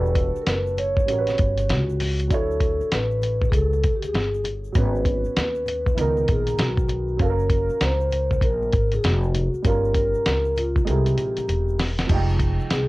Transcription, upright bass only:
0.00 0.33 E1 medium
0.36 muted upright bass stroke soft
0.47 1.08 F#1 medium
1.08 1.37 A1 medium
1.39 1.71 G1 medium
1.69 2.27 C#2 medium
2.30 2.78 D2 medium
2.81 muted upright bass stroke soft
2.92 3.50 A1 medium
3.52 3.82 C#2 medium
3.84 4.13 D2 medium
4.14 4.72 G1 medium
4.75 5.23 G#1 loud
5.26 muted upright bass stroke soft
5.37 5.95 D#2 medium
5.97 6.27 C#2 loud
6.29 6.58 A#1 medium
6.59 7.17 B1 medium
7.19 7.68 F#1 medium
7.70 muted upright bass stroke medium
7.81 8.39 C#2 medium
8.41 8.71 A#1 medium
8.73 9.02 G#1 medium
9.04 9.52 F1 medium
9.54 muted upright bass stroke soft
9.64 10.12 G1 medium
10.15 muted upright bass stroke soft
10.26 10.84 C#2 medium
10.88 11.18 C2 medium
11.18 11.47 A#1 medium
11.48 12.07 E1 medium
12.10 12.57 F1 loud
12.60 muted upright bass stroke soft
12.71 12.88 C2 medium

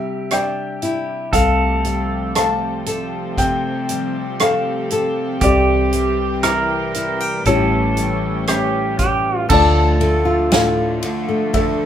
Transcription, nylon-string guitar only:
0.00 1.33 C3 medium
0.00 1.34 D3 soft
0.00 1.85 G3 soft
0.00 0.30 D4 medium
0.00 0.81 E4 medium
0.31 1.27 D4 medium
0.83 1.34 E4 medium
1.33 3.36 C3 medium
1.85 3.89 G3 medium
2.37 2.86 A4 medium
2.87 4.40 A4 medium
3.38 5.36 C3 medium
3.90 5.92 G3 medium
4.41 4.91 A4 medium
4.92 5.37 A4 medium
5.42 7.40 C3 medium
5.93 7.46 G3 medium
6.43 6.94 E4 medium
6.95 7.20 E4 medium
7.20 7.46 G4 medium
7.45 9.50 A2 medium
7.45 9.44 E3 medium
7.45 7.96 G3 medium
7.45 8.48 C#4 medium
7.45 8.98 G4 medium
7.97 9.50 G3 medium
8.49 9.45 C#4 soft
9.00 9.45 G4 medium
9.49 11.52 D2 medium
9.49 9.99 D3 medium
9.49 10.01 A3 medium
9.49 11.86 D4 medium
9.49 10.24 F4 medium
10.00 11.02 D3 medium
10.00 11.28 A3 medium
10.25 11.86 F4 medium
10.51 11.03 A2 medium
11.03 11.86 D3 medium
11.29 11.86 A3 medium
11.53 11.86 D2 medium

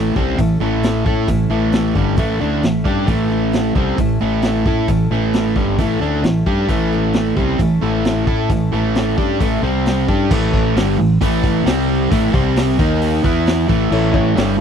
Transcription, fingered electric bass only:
0.00 0.13 A1 medium
0.16 0.37 C2 medium
0.39 0.60 A1 medium
0.60 1.03 A1 medium
1.06 1.27 A2 medium
1.28 1.49 A1 medium
1.50 1.92 A1 medium
1.95 2.16 G1 medium
2.17 2.39 A1 medium
2.41 2.62 D2 medium
2.63 2.84 A1 medium
2.85 3.07 G2 medium
3.08 3.72 A1 medium
3.75 3.97 C2 medium
3.98 4.19 A1 medium
4.22 4.63 A1 medium
4.66 4.87 A2 medium
4.88 5.10 A1 medium
5.11 5.53 A1 medium
5.56 5.77 G1 medium
5.78 5.99 A1 medium
6.01 6.22 D2 medium
6.23 6.45 A1 medium
6.46 6.68 G2 medium
6.69 7.33 A1 medium
7.37 7.58 C2 medium
7.59 7.80 A1 medium
7.82 8.24 A1 medium
8.27 8.48 A2 medium
8.50 8.71 A1 medium
8.72 9.15 A1 medium
9.18 9.39 G2 medium
9.41 9.62 A1 medium
9.63 10.05 C2 medium
10.08 10.29 G2 medium
10.31 10.73 A1 medium
10.76 10.97 G1 medium
10.98 11.19 A1 medium
11.21 11.63 A1 medium
11.65 12.08 C2 medium
12.11 12.33 A1 medium
12.34 12.76 C2 medium
12.79 13.21 D#2 medium
13.24 13.66 E2 loud
13.69 13.90 A1 loud
13.92 14.34 A1 medium
14.36 14.58 G1 medium

